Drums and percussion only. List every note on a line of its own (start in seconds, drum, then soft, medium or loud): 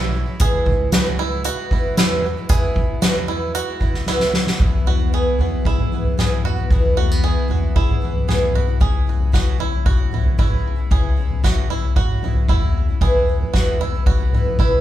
0.40 kick loud
0.40 closed hi-hat medium
0.66 kick medium
0.92 snare loud
0.92 closed hi-hat medium
1.44 closed hi-hat medium
1.71 kick medium
1.97 snare loud
1.97 closed hi-hat medium
2.49 kick loud
2.49 closed hi-hat medium
2.76 kick medium
3.02 snare loud
3.02 closed hi-hat medium
3.55 closed hi-hat medium
3.81 kick medium
3.94 snare soft
4.06 snare medium
4.20 snare medium
4.34 snare medium
4.47 snare medium
4.60 kick medium
4.60 floor tom medium
4.86 floor tom medium
5.39 floor tom medium
5.65 kick medium
5.65 floor tom medium
5.78 floor tom medium
5.78 mid tom medium
6.04 floor tom medium
6.18 snare medium
6.18 mid tom medium
6.44 floor tom medium
6.71 kick loud
6.71 floor tom medium
6.97 floor tom medium
7.49 floor tom medium
7.76 kick loud
7.76 floor tom medium
7.89 floor tom medium
7.89 mid tom medium
8.16 floor tom medium
8.29 snare medium
8.29 mid tom medium
8.55 floor tom medium
8.81 kick medium
8.81 floor tom medium
9.20 floor tom medium
9.33 kick medium
9.33 snare medium
9.60 floor tom medium
9.86 kick medium
9.86 floor tom medium
10.13 floor tom medium
10.13 mid tom medium
10.26 floor tom medium
10.39 kick loud
10.52 floor tom medium
10.91 kick loud
10.91 floor tom medium
11.31 floor tom medium
11.44 kick medium
11.44 snare medium
11.70 floor tom medium
11.96 kick loud
11.96 floor tom medium
12.23 floor tom medium
12.23 mid tom medium
12.35 floor tom medium
12.49 kick loud
12.62 floor tom medium
13.01 kick medium
13.01 floor tom medium
13.41 floor tom medium
13.54 kick medium
13.54 snare medium
13.80 floor tom medium
14.06 kick medium
14.06 floor tom medium
14.33 floor tom medium
14.33 mid tom medium
14.46 floor tom medium
14.59 kick loud
14.72 floor tom medium